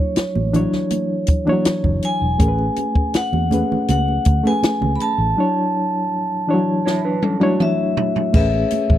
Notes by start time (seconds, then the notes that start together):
Already playing: F#3 D4 E4 C#5
0.16 muted fingered electric bass stroke, snare, closed hi-hat, muted conga
0.35 A1, muted conga, high conga
0.53 E3 D4 E4 C#5, closed hi-hat, high conga, low conga
0.59 F#3
0.73 snare, low conga
0.90 closed hi-hat, high conga
1.27 kick, closed hi-hat
1.46 E3 D4 E4 C#5, high conga
1.52 F#3
1.65 muted fingered electric bass stroke, snare, closed hi-hat
1.84 F#1, kick, low conga
2.03 G#5, closed hi-hat
2.21 E1
2.38 A1 A3 C#4 G#4 A#4, kick, closed hi-hat, muted conga
2.48 B4
2.59 muted conga
2.76 closed hi-hat, high conga
2.95 kick
3.14 F#5, muted fingered electric bass stroke, snare, closed hi-hat, muted conga
3.33 E2, muted conga, high conga
3.50 A3 C#4 G#4 B4, closed hi-hat, high conga, low conga
3.72 low conga
3.88 C#2 F#5, closed hi-hat, high conga
4.08 muted conga
4.25 D2, kick, closed hi-hat
4.43 A3 C#4 G#4 B4 G#5, high conga
4.63 muted fingered electric bass stroke, snare, closed hi-hat
4.81 C#2, muted conga, low conga
4.96 B5
5.00 A5, closed hi-hat
5.18 A1
5.37 F#3 D4 E4 C#5
6.47 E3 D4 E4 C#5
6.54 F#3
6.86 E4 C#5, snare
7.05 D4 B4
7.22 C#4 A4, high tom
7.40 F#3 A3 D4 E4 F#4 C#5, high tom
7.60 E5, mid tom
7.97 floor tom
8.16 floor tom
8.33 A1 A3 C#4 G#4 B4 C#5 E5, kick, crash
8.54 muted conga
8.71 closed hi-hat, high conga
8.90 A1, kick